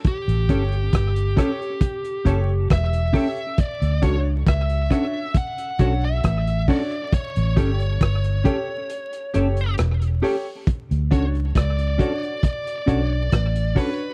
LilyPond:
<<
  \new Staff \with { instrumentName = "Lead electric guitar" } { \time 4/4 \key d \major \tempo 4 = 68 g'2. e''4 | d''8 cis''8 e''4 fis''8. e''8. d''8 | cis''2. r4 | r8 cis''8 d''4 d''4. b'8 | }
  \new Staff \with { instrumentName = "Upright piano" } { \time 4/4 \key d \major r8 <g' a' cis''>16 r8. <g' a' cis''>16 <a' cis''>16 r8 <g' a' cis''>16 r8. <g' a' cis''>16 r16 | r8 <d' fis' cis''>16 r8. <d' fis' cis''>16 <fis' cis''>16 r8 <d' fis' cis''>16 r8. <d' fis' cis''>16 r16 | r8 <g' a' cis''>16 r8. <g' a' cis''>16 <a' cis''>16 r8 <g' a' cis''>16 r8. <g' a' cis''>16 r16 | r8 <d' fis' cis''>16 r8. <d' fis' cis''>16 <fis' cis''>16 r8 <d' fis' cis''>16 r8. <d' fis' cis''>16 r16 | }
  \new Staff \with { instrumentName = "Clean electric guitar" } { \time 4/4 \key d \major r8 <cis' g' a'>8 r8 <cis' g' a'>8 r8 <cis' g' a'>8 r8 <cis' g' a'>8 | r8 <cis' fis' a'>8 r8 <cis' fis' a'>8 r8 <cis' fis' a'>8 r8 <cis' fis' a'>8 | r8 <cis' g' a'>8 r8 <cis' g' a'>8 r8 <cis' g' a'>8 r8 <cis' g' a'>8 | r8 <cis' fis' a'>8 r8 <cis' fis' a'>8 r8 <cis' fis' a'>8 r8 <cis' fis' a'>8 | }
  \new Staff \with { instrumentName = "Fingered electric bass" } { \clef bass \time 4/4 \key d \major r16 a,,16 g,,8 g,,8 r4 fis,,8 e,,8 r8 | r16 d,16 cis,8 cis,8 r4 b,,8 a,,8 r8 | r16 a,,16 g,,8 g,,8 r4 fis,,8 e,,8 r8 | r16 d,16 cis,8 cis,8 r4 b,,8 a,,8 r8 | }
  \new DrumStaff \with { instrumentName = "Drums" } \drummode { \time 4/4 <hh bd>16 hh16 <hh bd>16 hh16 <hh bd ss>16 hh16 <hh bd ss>16 hh16 <hh bd>16 hh16 <hh bd>8 <hh bd ss>16 hh16 <hho bd>16 hh16 | <hh bd>16 hh16 <hh bd>8 <hh bd ss>16 hh16 <hh bd ss>8 <hh bd>16 hh16 <hh bd>8 <hh bd ss>16 hh16 <hho bd>16 hh16 | <hh bd>16 hh16 <hh bd>16 hh16 <hh bd ss>16 hh16 <hh bd>8 hh16 hh16 hh16 hh16 <hh ss>16 hh16 hho8 | <hh bd>16 hh16 <hh bd>16 hh16 <hh bd ss>16 hh16 <hh bd>16 hh16 <hh bd>16 hh16 <hh bd>8 <hh bd ss>16 hh16 <hho bd>16 hh16 | }
>>